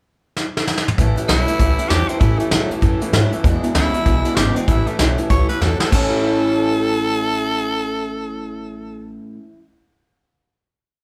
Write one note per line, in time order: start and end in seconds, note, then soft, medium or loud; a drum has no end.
0.37 snare medium
0.57 snare medium
0.67 snare medium
0.78 snare medium
0.88 mid tom loud
0.98 1.16 A1 medium
0.98 1.15 A2 medium
0.98 1.17 A2 medium
0.98 1.16 E3 loud
0.98 1.18 E3 medium
0.98 1.18 A3 medium
0.98 1.16 C#4 medium
0.98 1.15 E4 loud
0.98 kick loud
0.98 closed hi-hat medium
1.16 1.28 A2 medium
1.16 1.28 E3 medium
1.16 1.28 A3 soft
1.16 1.28 C#4 medium
1.16 1.28 E4 medium
1.16 muted upright bass stroke medium
1.16 closed hi-hat medium
1.28 1.46 B1 medium
1.28 1.48 A2 medium
1.28 1.46 A2 medium
1.28 1.48 E3 medium
1.28 1.47 F#3 loud
1.28 1.48 A3 medium
1.28 1.47 C#4 medium
1.28 1.90 E4 loud
1.28 1.46 E4 medium
1.28 snare loud
1.28 closed hi-hat medium
1.47 1.59 A2 medium
1.47 1.59 E3 medium
1.47 1.58 A3 soft
1.47 1.59 C#4 soft
1.47 1.60 E4 medium
1.47 muted upright bass stroke medium
1.47 closed hi-hat medium
1.59 1.78 C#2 medium
1.59 1.77 A2 medium
1.59 1.78 E3 medium
1.59 1.77 E3 medium
1.59 1.79 A3 medium
1.59 1.78 C#4 medium
1.59 1.77 E4 medium
1.59 kick loud
1.59 closed hi-hat medium
1.78 1.90 A2 medium
1.78 1.90 E3 medium
1.78 1.89 A3 medium
1.78 1.90 C#4 medium
1.78 1.90 E4 medium
1.78 muted upright bass stroke medium
1.78 closed hi-hat medium
1.89 2.08 E2 medium
1.89 2.09 A2 medium
1.89 2.08 A2 medium
1.89 2.09 E3 medium
1.89 2.08 F#3 medium
1.89 2.09 A3 medium
1.89 2.09 C#4 medium
1.89 2.07 E4 medium
1.89 2.10 G4 medium
1.89 snare loud
1.89 closed hi-hat medium
2.08 2.19 A2 medium
2.08 2.20 E3 medium
2.08 2.21 A3 soft
2.08 2.21 C4 medium
2.08 2.21 C#4 medium
2.08 2.21 E4 medium
2.08 muted upright bass stroke medium
2.08 closed hi-hat medium
2.20 2.39 A2 medium
2.20 2.40 A2 medium
2.20 2.38 A2 medium
2.20 2.40 E3 medium
2.20 2.39 E3 medium
2.20 2.41 A3 medium
2.20 2.39 C#4 medium
2.20 2.40 E4 medium
2.20 2.37 E4 medium
2.20 kick loud
2.20 closed hi-hat medium
2.39 2.51 A2 medium
2.39 2.51 E3 medium
2.39 2.50 A3 medium
2.39 2.50 A3 soft
2.39 2.51 C#4 medium
2.39 2.51 E4 medium
2.39 muted upright bass stroke medium
2.39 closed hi-hat medium
2.51 2.71 A2 medium
2.51 2.69 A2 medium
2.51 2.70 C#3 loud
2.51 2.71 E3 medium
2.51 2.69 F#3 loud
2.51 2.70 A3 medium
2.51 2.71 A3 medium
2.51 2.70 C#4 medium
2.51 2.68 E4 medium
2.51 snare loud
2.51 closed hi-hat medium
2.69 2.81 A2 medium
2.69 2.82 E3 medium
2.69 2.81 A3 soft
2.69 2.82 C#4 medium
2.69 2.82 E4 medium
2.69 muted upright bass stroke medium
2.69 closed hi-hat medium
2.81 3.01 F#2 medium
2.81 3.00 A2 medium
2.81 3.01 E3 medium
2.81 3.00 E3 loud
2.81 3.01 A3 medium
2.81 3.00 C#4 medium
2.81 2.99 E4 medium
2.81 kick loud
2.81 closed hi-hat medium
3.00 3.13 A2 medium
3.00 3.13 E3 loud
3.00 3.12 A3 medium
3.00 3.13 C#4 medium
3.00 3.13 E4 medium
3.00 muted upright bass stroke medium
3.00 closed hi-hat medium
3.12 3.31 G#2 medium
3.12 3.32 A2 medium
3.12 3.31 A2 medium
3.12 3.32 E3 medium
3.12 3.31 F#3 medium
3.12 3.33 A3 medium
3.12 3.33 C#4 medium
3.12 3.31 E4 loud
3.12 snare loud
3.12 closed hi-hat medium
3.32 3.43 A2 medium
3.32 3.43 E3 medium
3.32 3.46 A3 medium
3.32 3.45 C#4 medium
3.32 3.44 E4 medium
3.32 muted upright bass stroke medium
3.32 closed hi-hat medium
3.44 3.61 E2 medium
3.44 3.62 E2 medium
3.44 3.64 E2 medium
3.44 3.62 B2 medium
3.44 3.64 B2 medium
3.44 3.64 E3 medium
3.44 3.64 G#3 medium
3.44 3.63 D4 medium
3.44 3.62 E4 loud
3.44 kick loud
3.44 closed hi-hat medium
3.63 3.74 E2 medium
3.63 3.75 B2 medium
3.63 3.74 E3 medium
3.63 3.75 G#3 medium
3.63 3.76 D4 medium
3.63 3.75 E4 medium
3.63 muted upright bass stroke medium
3.63 closed hi-hat medium
3.75 3.93 D2 medium
3.75 3.94 E2 medium
3.75 3.92 E2 medium
3.75 3.95 B2 medium
3.75 3.93 C#3 loud
3.75 3.95 E3 medium
3.75 3.95 G#3 medium
3.75 3.94 D4 medium
3.75 4.37 E4 loud
3.75 3.93 E4 medium
3.75 snare loud
3.75 closed hi-hat medium
3.93 4.05 E2 medium
3.93 4.05 B2 medium
3.93 4.05 G#3 soft
3.93 4.06 D4 medium
3.93 4.06 E4 medium
3.93 muted upright bass stroke medium
3.93 closed hi-hat medium
3.97 4.04 E3 soft
4.06 4.24 B1 medium
4.06 4.24 E2 medium
4.06 4.24 B2 medium
4.06 4.25 E3 medium
4.06 4.25 G#3 medium
4.06 4.25 D4 medium
4.06 4.23 E4 medium
4.06 kick loud
4.06 closed hi-hat medium
4.25 4.35 E2 medium
4.25 4.36 B2 medium
4.25 4.37 E3 medium
4.25 4.38 G#3 medium
4.25 4.38 D4 medium
4.25 4.37 E4 medium
4.25 muted upright bass stroke medium
4.25 closed hi-hat medium
4.36 4.56 G#1 loud
4.36 4.54 E2 medium
4.36 4.56 E2 medium
4.36 4.57 B2 medium
4.36 4.55 C#3 medium
4.36 4.57 E3 medium
4.36 4.56 G#3 medium
4.36 4.56 D4 medium
4.36 4.54 E4 medium
4.36 4.58 G4 loud
4.36 snare loud
4.36 closed hi-hat medium
4.56 4.67 E2 medium
4.56 4.67 B2 medium
4.56 4.69 E3 soft
4.56 4.69 G#3 medium
4.56 4.70 C4 medium
4.56 4.69 D4 medium
4.56 4.68 E4 medium
4.56 muted upright bass stroke medium
4.56 closed hi-hat medium
4.68 4.87 A1 medium
4.68 4.85 A2 medium
4.68 4.88 A2 medium
4.68 4.86 E3 loud
4.68 4.88 E3 medium
4.68 4.88 A3 medium
4.68 4.89 C#4 medium
4.68 4.89 E4 loud
4.68 4.87 E4 medium
4.68 kick loud
4.68 closed hi-hat medium
4.87 4.98 A2 medium
4.87 4.98 E3 medium
4.87 4.99 A3 medium
4.87 5.00 C#4 medium
4.87 5.00 E4 medium
4.87 muted upright bass stroke medium
4.87 closed hi-hat medium
4.91 4.99 A3 soft
4.99 5.17 B1 loud
4.99 5.16 A2 medium
4.99 5.18 A2 medium
4.99 5.19 E3 medium
4.99 5.17 F#3 medium
4.99 5.18 A3 medium
4.99 5.19 A3 medium
4.99 5.19 C#4 medium
4.99 5.16 E4 medium
4.99 snare loud
4.99 closed hi-hat medium
5.18 5.28 A2 medium
5.18 5.29 E3 medium
5.18 5.30 A3 soft
5.18 5.31 C#4 medium
5.18 5.30 E4 medium
5.18 closed hi-hat medium
5.30 5.48 C#2 medium
5.30 5.47 A2 medium
5.30 5.49 E3 medium
5.30 5.47 E3 medium
5.30 5.50 A3 medium
5.30 5.50 C#4 medium
5.30 5.48 E4 medium
5.30 5.48 C#5 loud
5.30 kick loud
5.30 closed hi-hat medium
5.49 5.60 A2 medium
5.49 5.60 E3 medium
5.49 5.61 A3 soft
5.49 5.61 C#4 medium
5.49 5.61 E4 medium
5.49 5.63 B4 medium
5.49 closed hi-hat medium
5.61 5.79 E2 medium
5.61 5.80 A2 medium
5.61 5.79 A2 medium
5.61 5.81 E3 medium
5.61 5.79 F#3 medium
5.61 5.81 A3 medium
5.61 5.80 C#4 medium
5.61 5.78 E4 medium
5.61 5.79 A4 medium
5.61 snare medium
5.79 5.91 A2 medium
5.79 5.91 E3 medium
5.79 5.94 A3 soft
5.79 5.93 C#4 soft
5.79 5.92 E4 medium
5.79 5.91 A4 medium
5.79 muted upright bass stroke medium
5.79 snare loud
5.88 9.38 A2 medium
5.88 9.41 A3 medium
5.88 9.11 A4 loud
5.92 9.43 E3 medium
5.92 9.42 C#4 loud
5.92 9.43 E4 medium
5.92 9.44 A4 loud
5.92 9.45 C#5 loud
5.92 kick loud
5.92 crash loud
5.98 9.48 A3 medium
6.02 9.52 C#4 medium
6.06 9.56 E4 medium